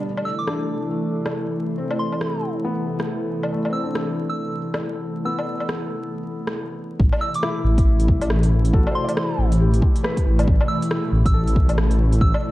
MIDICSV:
0, 0, Header, 1, 6, 480
1, 0, Start_track
1, 0, Key_signature, 0, "minor"
1, 0, Tempo, 434783
1, 44, Time_signature, 4, 2, 24, 8
1, 13814, End_track
2, 0, Start_track
2, 0, Title_t, "Synth bell"
2, 0, Program_c, 0, 98
2, 278, Note_on_c, 0, 88, 78
2, 396, Note_off_c, 0, 88, 0
2, 427, Note_on_c, 0, 86, 76
2, 677, Note_off_c, 0, 86, 0
2, 2200, Note_on_c, 0, 84, 79
2, 2682, Note_off_c, 0, 84, 0
2, 4116, Note_on_c, 0, 88, 82
2, 4235, Note_off_c, 0, 88, 0
2, 4742, Note_on_c, 0, 88, 78
2, 4994, Note_off_c, 0, 88, 0
2, 5801, Note_on_c, 0, 88, 85
2, 6484, Note_off_c, 0, 88, 0
2, 7960, Note_on_c, 0, 88, 93
2, 8077, Note_off_c, 0, 88, 0
2, 8120, Note_on_c, 0, 86, 85
2, 8363, Note_off_c, 0, 86, 0
2, 9883, Note_on_c, 0, 84, 90
2, 10363, Note_off_c, 0, 84, 0
2, 11792, Note_on_c, 0, 88, 91
2, 11914, Note_off_c, 0, 88, 0
2, 12431, Note_on_c, 0, 88, 86
2, 12679, Note_off_c, 0, 88, 0
2, 13481, Note_on_c, 0, 88, 96
2, 13814, Note_off_c, 0, 88, 0
2, 13814, End_track
3, 0, Start_track
3, 0, Title_t, "Felt piano"
3, 0, Program_c, 1, 0
3, 0, Control_c, 1, 64, 127
3, 0, Note_on_c, 1, 59, 56
3, 61, Control_c, 1, 64, 0
3, 120, Note_off_c, 1, 59, 0
3, 248, Control_c, 1, 64, 127
3, 526, Note_on_c, 1, 62, 69
3, 1004, Note_on_c, 1, 57, 47
3, 1563, Note_off_c, 1, 62, 0
3, 1965, Note_on_c, 1, 60, 56
3, 2042, Note_off_c, 1, 57, 0
3, 2921, Note_on_c, 1, 59, 67
3, 3002, Note_off_c, 1, 60, 0
3, 3890, Note_on_c, 1, 57, 54
3, 3960, Note_off_c, 1, 59, 0
3, 4083, Note_on_c, 1, 60, 52
3, 4234, Note_on_c, 1, 62, 52
3, 4925, Note_off_c, 1, 57, 0
3, 5053, Note_off_c, 1, 60, 0
3, 5217, Note_off_c, 1, 62, 0
3, 5797, Note_on_c, 1, 59, 57
3, 6838, Note_off_c, 1, 59, 0
3, 7737, Control_c, 1, 64, 0
3, 7903, Control_c, 1, 64, 127
3, 8202, Note_on_c, 1, 64, 80
3, 9241, Note_off_c, 1, 64, 0
3, 9640, Note_on_c, 1, 69, 76
3, 9642, Note_on_c, 1, 66, 59
3, 9838, Note_on_c, 1, 72, 60
3, 9983, Note_on_c, 1, 74, 55
3, 10602, Note_on_c, 1, 67, 55
3, 10680, Note_off_c, 1, 69, 0
3, 10681, Note_off_c, 1, 66, 0
3, 10810, Note_off_c, 1, 72, 0
3, 10971, Note_off_c, 1, 74, 0
3, 11079, Note_on_c, 1, 71, 67
3, 11641, Note_off_c, 1, 67, 0
3, 12119, Note_off_c, 1, 71, 0
3, 12518, Note_on_c, 1, 69, 62
3, 13559, Note_off_c, 1, 69, 0
3, 13814, End_track
4, 0, Start_track
4, 0, Title_t, "Analog synth pad"
4, 0, Program_c, 2, 89
4, 34, Note_on_c, 2, 48, 69
4, 35, Note_on_c, 2, 57, 67
4, 37, Note_on_c, 2, 52, 66
4, 37, Note_on_c, 2, 69, 67
4, 39, Note_on_c, 2, 64, 80
4, 7195, Note_off_c, 2, 48, 0
4, 7195, Note_off_c, 2, 57, 0
4, 7196, Note_off_c, 2, 52, 0
4, 7196, Note_off_c, 2, 69, 0
4, 7197, Note_off_c, 2, 64, 0
4, 7726, Note_on_c, 2, 48, 76
4, 7726, Note_on_c, 2, 57, 69
4, 7728, Note_on_c, 2, 47, 75
4, 7730, Note_on_c, 2, 52, 70
4, 7730, Note_on_c, 2, 64, 86
4, 13814, Note_off_c, 2, 47, 0
4, 13814, Note_off_c, 2, 48, 0
4, 13814, Note_off_c, 2, 52, 0
4, 13814, Note_off_c, 2, 57, 0
4, 13814, Note_off_c, 2, 64, 0
4, 13814, End_track
5, 0, Start_track
5, 0, Title_t, "Detuned saw bass"
5, 0, Program_c, 3, 39
5, 7722, Note_on_c, 3, 33, 100
5, 7856, Note_off_c, 3, 33, 0
5, 8435, Note_on_c, 3, 33, 82
5, 8921, Note_on_c, 3, 36, 83
5, 8937, Note_off_c, 3, 33, 0
5, 9055, Note_off_c, 3, 36, 0
5, 9062, Note_on_c, 3, 33, 79
5, 9629, Note_off_c, 3, 33, 0
5, 9644, Note_on_c, 3, 33, 99
5, 9776, Note_off_c, 3, 33, 0
5, 10361, Note_on_c, 3, 33, 88
5, 10830, Note_off_c, 3, 33, 0
5, 11327, Note_on_c, 3, 33, 90
5, 11550, Note_off_c, 3, 33, 0
5, 11561, Note_on_c, 3, 33, 100
5, 11695, Note_off_c, 3, 33, 0
5, 12276, Note_on_c, 3, 33, 88
5, 12762, Note_on_c, 3, 36, 84
5, 12779, Note_off_c, 3, 33, 0
5, 12896, Note_off_c, 3, 36, 0
5, 12905, Note_on_c, 3, 33, 78
5, 13470, Note_off_c, 3, 33, 0
5, 13479, Note_on_c, 3, 33, 102
5, 13614, Note_off_c, 3, 33, 0
5, 13814, End_track
6, 0, Start_track
6, 0, Title_t, "Drums"
6, 193, Note_on_c, 9, 77, 57
6, 303, Note_off_c, 9, 77, 0
6, 524, Note_on_c, 9, 37, 93
6, 635, Note_off_c, 9, 37, 0
6, 1387, Note_on_c, 9, 37, 93
6, 1387, Note_on_c, 9, 77, 46
6, 1497, Note_off_c, 9, 37, 0
6, 1497, Note_off_c, 9, 77, 0
6, 2104, Note_on_c, 9, 77, 56
6, 2215, Note_off_c, 9, 77, 0
6, 2346, Note_on_c, 9, 77, 33
6, 2441, Note_on_c, 9, 37, 91
6, 2457, Note_off_c, 9, 77, 0
6, 2551, Note_off_c, 9, 37, 0
6, 3309, Note_on_c, 9, 37, 95
6, 3419, Note_off_c, 9, 37, 0
6, 3790, Note_on_c, 9, 77, 54
6, 3901, Note_off_c, 9, 77, 0
6, 4030, Note_on_c, 9, 77, 55
6, 4141, Note_off_c, 9, 77, 0
6, 4364, Note_on_c, 9, 37, 100
6, 4474, Note_off_c, 9, 37, 0
6, 5233, Note_on_c, 9, 37, 96
6, 5233, Note_on_c, 9, 77, 45
6, 5343, Note_off_c, 9, 37, 0
6, 5343, Note_off_c, 9, 77, 0
6, 5946, Note_on_c, 9, 77, 55
6, 6057, Note_off_c, 9, 77, 0
6, 6187, Note_on_c, 9, 77, 32
6, 6281, Note_on_c, 9, 37, 102
6, 6297, Note_off_c, 9, 77, 0
6, 6391, Note_off_c, 9, 37, 0
6, 7146, Note_on_c, 9, 37, 99
6, 7256, Note_off_c, 9, 37, 0
6, 7723, Note_on_c, 9, 36, 121
6, 7833, Note_off_c, 9, 36, 0
6, 7867, Note_on_c, 9, 77, 66
6, 7977, Note_off_c, 9, 77, 0
6, 8107, Note_on_c, 9, 42, 58
6, 8201, Note_on_c, 9, 37, 103
6, 8218, Note_off_c, 9, 42, 0
6, 8312, Note_off_c, 9, 37, 0
6, 8588, Note_on_c, 9, 36, 108
6, 8589, Note_on_c, 9, 42, 59
6, 8699, Note_off_c, 9, 36, 0
6, 8699, Note_off_c, 9, 42, 0
6, 8828, Note_on_c, 9, 42, 47
6, 8923, Note_on_c, 9, 36, 108
6, 8939, Note_off_c, 9, 42, 0
6, 9033, Note_off_c, 9, 36, 0
6, 9069, Note_on_c, 9, 42, 58
6, 9069, Note_on_c, 9, 77, 53
6, 9164, Note_on_c, 9, 37, 101
6, 9179, Note_off_c, 9, 42, 0
6, 9179, Note_off_c, 9, 77, 0
6, 9274, Note_off_c, 9, 37, 0
6, 9308, Note_on_c, 9, 42, 47
6, 9418, Note_off_c, 9, 42, 0
6, 9548, Note_on_c, 9, 42, 52
6, 9643, Note_on_c, 9, 36, 125
6, 9658, Note_off_c, 9, 42, 0
6, 9753, Note_off_c, 9, 36, 0
6, 9790, Note_on_c, 9, 77, 66
6, 9900, Note_off_c, 9, 77, 0
6, 10031, Note_on_c, 9, 42, 58
6, 10031, Note_on_c, 9, 77, 37
6, 10123, Note_on_c, 9, 37, 112
6, 10142, Note_off_c, 9, 42, 0
6, 10142, Note_off_c, 9, 77, 0
6, 10234, Note_off_c, 9, 37, 0
6, 10509, Note_on_c, 9, 42, 57
6, 10620, Note_off_c, 9, 42, 0
6, 10749, Note_on_c, 9, 42, 49
6, 10843, Note_on_c, 9, 36, 109
6, 10860, Note_off_c, 9, 42, 0
6, 10953, Note_off_c, 9, 36, 0
6, 10992, Note_on_c, 9, 42, 60
6, 11088, Note_on_c, 9, 37, 108
6, 11102, Note_off_c, 9, 42, 0
6, 11198, Note_off_c, 9, 37, 0
6, 11227, Note_on_c, 9, 36, 64
6, 11230, Note_on_c, 9, 42, 46
6, 11337, Note_off_c, 9, 36, 0
6, 11340, Note_off_c, 9, 42, 0
6, 11471, Note_on_c, 9, 42, 56
6, 11471, Note_on_c, 9, 77, 63
6, 11564, Note_on_c, 9, 36, 127
6, 11582, Note_off_c, 9, 42, 0
6, 11582, Note_off_c, 9, 77, 0
6, 11675, Note_off_c, 9, 36, 0
6, 11709, Note_on_c, 9, 77, 65
6, 11819, Note_off_c, 9, 77, 0
6, 11949, Note_on_c, 9, 42, 56
6, 12044, Note_on_c, 9, 37, 109
6, 12060, Note_off_c, 9, 42, 0
6, 12154, Note_off_c, 9, 37, 0
6, 12426, Note_on_c, 9, 36, 111
6, 12428, Note_on_c, 9, 42, 55
6, 12537, Note_off_c, 9, 36, 0
6, 12539, Note_off_c, 9, 42, 0
6, 12668, Note_on_c, 9, 42, 48
6, 12761, Note_on_c, 9, 36, 113
6, 12779, Note_off_c, 9, 42, 0
6, 12872, Note_off_c, 9, 36, 0
6, 12906, Note_on_c, 9, 42, 59
6, 12906, Note_on_c, 9, 77, 51
6, 13003, Note_on_c, 9, 37, 109
6, 13017, Note_off_c, 9, 42, 0
6, 13017, Note_off_c, 9, 77, 0
6, 13114, Note_off_c, 9, 37, 0
6, 13146, Note_on_c, 9, 42, 45
6, 13257, Note_off_c, 9, 42, 0
6, 13386, Note_on_c, 9, 42, 54
6, 13479, Note_on_c, 9, 36, 127
6, 13496, Note_off_c, 9, 42, 0
6, 13590, Note_off_c, 9, 36, 0
6, 13627, Note_on_c, 9, 77, 61
6, 13737, Note_off_c, 9, 77, 0
6, 13814, End_track
0, 0, End_of_file